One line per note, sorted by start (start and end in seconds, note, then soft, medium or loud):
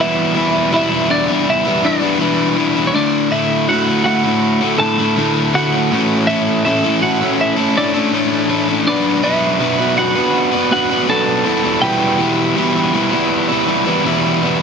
0.00 0.70 E2 medium
0.00 0.71 B2 medium
0.00 0.34 E3 medium
0.00 0.34 G3 loud
0.00 0.35 B3 medium
0.00 0.37 E4 loud
0.00 0.69 E4 medium
0.00 0.69 E5 loud
0.34 0.72 E3 medium
0.34 0.72 G3 medium
0.34 0.73 B3 medium
0.34 0.74 E4 medium
0.71 1.27 E2 loud
0.71 1.27 B2 loud
0.71 0.92 E3 loud
0.71 0.90 G3 loud
0.71 0.89 B3 loud
0.71 1.07 E4 medium
0.71 0.89 E4 loud
0.76 1.12 E5 medium
0.90 1.07 E3 medium
0.90 1.08 G3 medium
0.90 1.08 B3 medium
0.90 1.10 E4 medium
1.08 1.30 E3 medium
1.08 1.28 G3 medium
1.08 1.27 B3 medium
1.08 1.44 D4 medium
1.08 1.27 E4 medium
1.08 1.48 D5 medium
1.27 1.67 E3 medium
1.27 1.66 G3 medium
1.27 1.65 B3 medium
1.27 1.64 E4 medium
1.50 1.83 E4 medium
1.50 1.86 E5 loud
1.65 1.82 E3 medium
1.65 1.83 G3 medium
1.65 1.83 B3 medium
1.65 1.85 E4 medium
1.82 2.03 E3 medium
1.82 2.02 G3 medium
1.82 2.01 B3 medium
1.82 2.84 D4 medium
1.82 2.00 E4 medium
1.82 2.87 D5 medium
2.01 2.20 E3 medium
2.01 2.19 G3 medium
2.01 2.20 B3 medium
2.01 2.21 E4 medium
2.19 2.92 E2 loud
2.19 2.92 B2 medium
2.19 2.55 E3 medium
2.19 2.56 G3 loud
2.19 2.56 B3 loud
2.19 2.58 E4 loud
2.56 2.78 E3 medium
2.56 2.77 G3 medium
2.56 2.75 B3 medium
2.56 2.76 E4 medium
2.76 2.95 E3 medium
2.76 2.93 G3 medium
2.76 2.93 B3 medium
2.76 2.96 E4 medium
2.87 2.94 C#5 medium
2.94 3.67 D2 medium
2.94 3.30 A2 medium
2.94 3.31 D3 medium
2.94 3.32 A3 medium
2.94 3.29 D4 medium
2.94 3.34 E4 medium
2.94 3.33 D5 loud
3.31 3.68 A2 medium
3.31 3.68 D3 medium
3.31 3.70 A3 medium
3.31 3.66 E4 medium
3.31 3.70 E4 medium
3.31 3.69 E5 loud
3.68 4.24 D2 medium
3.68 4.04 A2 loud
3.68 3.88 D3 medium
3.68 3.88 A3 loud
3.68 3.86 E4 loud
3.68 4.03 F#4 medium
3.68 4.04 F#5 medium
3.86 4.04 D3 medium
3.86 4.06 A3 medium
3.86 4.07 E4 medium
4.04 4.61 A2 medium
4.04 4.25 D3 medium
4.04 4.25 A3 medium
4.04 4.22 E4 medium
4.04 4.75 F#4 medium
4.04 4.76 F#5 loud
4.23 4.62 D3 medium
4.23 4.62 A3 medium
4.23 4.59 E4 medium
4.61 4.79 D3 medium
4.61 4.81 A3 medium
4.61 4.81 E4 medium
4.78 5.16 A2 medium
4.78 5.00 D3 medium
4.78 5.00 A3 medium
4.78 4.97 E4 medium
4.78 5.49 A4 medium
4.78 5.56 A5 loud
4.98 5.17 D3 medium
4.98 5.18 A3 medium
4.98 5.17 E4 medium
5.17 5.89 D2 loud
5.17 5.53 A2 medium
5.17 5.54 D3 loud
5.17 5.56 A3 loud
5.17 5.56 E4 loud
5.54 5.89 A2 medium
5.54 5.74 D3 medium
5.54 5.73 A3 medium
5.54 5.71 E4 medium
5.54 6.25 F#4 medium
5.54 6.25 F#5 medium
5.72 5.90 D3 medium
5.72 5.93 A3 medium
5.72 5.89 E4 medium
5.91 6.64 A2 medium
5.91 6.64 E3 medium
5.91 6.28 A3 loud
5.91 6.28 C#4 medium
5.91 6.28 E4 loud
5.91 6.30 A4 medium
6.27 6.66 A3 medium
6.27 6.65 C#4 medium
6.27 6.62 E4 medium
6.27 6.66 E4 medium
6.27 6.68 A4 medium
6.27 6.62 E5 loud
6.65 7.21 A2 medium
6.65 7.21 E3 loud
6.65 6.85 A3 loud
6.65 6.84 C#4 loud
6.65 7.00 E4 medium
6.65 6.83 E4 loud
6.65 6.82 A4 loud
6.65 7.02 E5 medium
6.83 7.00 A3 medium
6.83 7.02 C#4 medium
6.83 7.03 E4 medium
6.83 7.03 A4 medium
7.02 7.22 A3 medium
7.02 7.22 C#4 medium
7.02 7.20 E4 medium
7.02 7.37 F#4 medium
7.02 7.19 A4 medium
7.02 7.40 F#5 medium
7.21 7.59 A3 medium
7.21 7.57 C#4 medium
7.21 7.57 E4 medium
7.21 7.55 A4 medium
7.40 7.74 E4 medium
7.40 7.78 E5 loud
7.57 7.74 A3 medium
7.57 7.75 C#4 medium
7.57 7.76 E4 medium
7.57 7.77 A4 medium
7.75 7.95 A3 medium
7.75 7.94 C#4 medium
7.75 8.84 D4 medium
7.75 7.93 E4 medium
7.75 7.92 A4 medium
7.75 8.86 D5 loud
7.94 8.12 A3 medium
7.94 8.12 C#4 medium
7.94 8.13 E4 medium
7.94 8.14 A4 medium
8.12 8.85 A2 medium
8.12 8.85 E3 medium
8.12 8.48 A3 loud
8.12 8.49 C#4 loud
8.12 8.50 E4 medium
8.12 8.51 A4 loud
8.49 8.69 A3 medium
8.49 8.69 C#4 medium
8.49 8.68 E4 medium
8.49 8.67 A4 medium
8.68 8.86 A3 medium
8.68 8.86 C#4 medium
8.68 8.85 E4 medium
8.68 8.85 A4 medium
8.87 9.59 B2 medium
8.87 9.59 F#3 medium
8.87 9.23 B3 medium
8.87 9.22 D4 medium
8.87 9.24 D4 loud
8.87 9.23 F#4 loud
8.87 9.25 B4 loud
8.87 9.25 D5 medium
9.23 9.60 B3 medium
9.23 9.61 D4 medium
9.23 9.94 E4 medium
9.23 9.61 F#4 medium
9.23 9.62 B4 medium
9.23 9.97 E5 loud
9.60 10.16 B2 loud
9.60 10.16 F#3 loud
9.60 9.81 B3 loud
9.60 9.80 D4 loud
9.60 9.79 F#4 loud
9.60 9.78 B4 loud
9.78 9.97 B3 medium
9.78 9.98 D4 medium
9.78 9.98 F#4 medium
9.78 9.99 B4 medium
9.97 10.17 B3 medium
9.97 10.17 D4 medium
9.97 10.68 F#4 medium
9.97 10.15 F#4 medium
9.97 10.14 B4 medium
9.97 10.68 F#5 loud
10.15 10.54 B3 medium
10.15 10.54 D4 medium
10.15 10.52 F#4 medium
10.15 10.51 B4 medium
10.52 10.70 B3 medium
10.52 10.72 D4 medium
10.52 10.72 F#4 medium
10.52 10.73 B4 medium
10.71 10.92 B3 medium
10.71 10.92 D4 medium
10.71 11.06 F#4 medium
10.71 10.90 F#4 medium
10.71 10.89 B4 medium
10.71 11.09 F#5 medium
10.90 11.08 B3 medium
10.90 11.09 D4 medium
10.90 11.09 F#4 medium
10.90 11.09 B4 medium
11.08 11.43 B2 medium
11.08 11.43 F#3 loud
11.08 11.44 B3 loud
11.08 11.45 D4 loud
11.08 11.44 F#4 loud
11.08 11.79 A4 medium
11.08 11.44 B4 loud
11.08 11.81 A5 medium
11.45 11.80 E2 loud
11.45 11.81 B2 medium
11.45 11.64 E3 medium
11.45 11.64 G3 medium
11.45 11.63 B3 medium
11.45 11.62 E4 loud
11.63 11.81 E3 medium
11.63 11.82 G3 medium
11.63 11.82 B3 medium
11.63 11.83 E4 medium
11.82 12.54 E2 medium
11.82 12.54 B2 loud
11.82 12.17 E3 medium
11.82 12.18 G3 medium
11.82 12.19 B3 loud
11.82 12.20 E4 loud
11.82 14.37 G4 medium
11.82 14.36 G5 medium
12.18 12.55 E3 medium
12.18 12.56 G3 medium
12.18 12.56 B3 medium
12.18 12.57 E4 medium
12.55 13.11 E2 medium
12.55 13.11 B2 loud
12.55 12.76 E3 loud
12.55 12.75 G3 loud
12.55 12.74 B3 loud
12.55 12.73 E4 loud
12.74 12.92 E3 medium
12.74 12.93 G3 medium
12.74 12.94 B3 medium
12.74 12.94 E4 medium
12.93 13.13 E3 medium
12.93 13.12 G3 medium
12.93 13.11 B3 medium
12.93 13.10 E4 medium
13.11 13.51 E3 medium
13.11 13.50 G3 medium
13.11 13.49 B3 medium
13.11 13.48 E4 medium
13.49 13.66 E3 medium
13.49 13.67 G3 medium
13.49 13.68 B3 medium
13.49 13.69 E4 medium
13.67 13.87 E3 medium
13.67 13.86 G3 medium
13.67 13.85 B3 medium
13.67 13.84 E4 medium
13.85 14.04 E3 medium
13.85 14.05 G3 medium
13.85 14.05 B3 medium
13.85 14.05 E4 medium
14.04 14.62 E2 medium
14.04 14.62 B2 loud
14.04 14.41 E3 loud
14.04 14.42 G3 loud
14.04 14.42 B3 medium
14.04 14.43 E4 loud
14.42 14.61 E3 medium
14.42 14.61 G3 medium
14.42 14.60 B3 medium
14.42 14.58 E4 medium